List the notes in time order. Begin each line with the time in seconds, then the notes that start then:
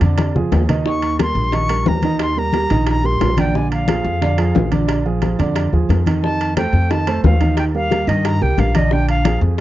0.01 F2 D3 D4 D5, high bongo, high conga, high timbale
0.18 high bongo, high conga, high timbale
0.35 F3 F4 G#4, high bongo, low conga
0.52 D#2, high bongo, low bongo, high timbale, low timbale
0.69 D#3 D#4 D#5, high bongo, low conga, high timbale
0.85 D#3 D#4 D#5 C#6, high bongo, high conga
1.02 high conga, high timbale
1.19 G3 G4 A#4 C6, high bongo, high conga, high timbale
1.35 A#1, high bongo, high conga
1.52 D#3 D#4 D#5 C#6, high bongo, high conga, high timbale
1.69 G3 G4 A#4, high bongo, high conga, high timbale
1.86 D#2 A#5, high bongo, low bongo, high conga, low timbale
2.02 D#3 D#4 D#5, high bongo, high conga, high timbale
2.19 C6, high bongo, high conga, high timbale
2.36 G3 G4 A#4 A#5, high conga
2.53 G3 G4 A#4, high bongo, high conga, high timbale
2.70 A#1 D#3 D#4 D#5, high bongo, high conga, high timbale
2.87 A#5, high bongo, high conga, high timbale
3.04 G3 G4 A#4 C6, high bongo, high conga
3.21 A#1, high bongo, low bongo, high conga, high timbale, low timbale
3.37 D3 D4 D5 G5, high bongo, high conga, high timbale
3.54 D3 D4 D5 G#5, high bongo, high conga
3.71 F5, high conga, high timbale
3.88 F3 F4 G#4, high bongo, high conga, high timbale
4.04 F2, high bongo, high conga
4.21 D3 D4 D5, high bongo, high conga, high timbale
4.38 F3 F4 G#4, high bongo, high conga, high timbale
4.55 A#1, high bongo, low bongo, high conga, low timbale
4.71 D3 D4 D5, high bongo, high conga, high timbale
4.88 high bongo, high conga, high timbale
5.05 F3 F4 G#4, high conga
5.22 F3 F4 G#4, high bongo, high conga, high timbale
5.39 F2 D3 D4 D5, high bongo, high conga, high timbale
5.56 high bongo, high conga, high timbale
5.73 D#2 F3 F4 G#4, high bongo, high conga
5.89 F2, high bongo, low bongo, high conga, high timbale
6.06 D#3 D#4 D#5, high bongo, high conga, high timbale
6.23 D#3 D#4 D#5 A5, high bongo, high conga
6.40 high conga, high timbale
6.57 A3 A4 C5 G5, high bongo, high conga, high timbale
6.73 F2, high bongo, high conga
6.91 D#3 D#4 D#5 A5, high bongo, high conga, high timbale
7.07 A3 A4 C5, high bongo, high conga, high timbale
7.24 D#2 F5, high bongo, low bongo, high conga, low timbale
7.41 D#3 D#4 D#5, high bongo, high conga, high timbale
7.57 G5, high bongo, high conga, high timbale
7.75 G3 G4 A#4 F5, high conga
7.91 G3 G4 A#4, high bongo, high conga, high timbale
8.07 G2 D#3 D#4 D#5, high bongo, high conga, high timbale
8.25 A#5, high bongo, high conga, high timbale
8.41 C2 G3 G4 A#4 G5, high bongo, high conga
8.58 A#1 F5, high bongo, low bongo, high conga, high timbale
8.75 D3 D4 D5 D#5, high bongo, high conga, high timbale
8.91 D3 D4 D5 G5, high bongo, high conga
9.09 F5, high conga, high timbale
9.25 F3 F4 G#4, high bongo, high conga, high timbale
9.41 F2, high bongo, high conga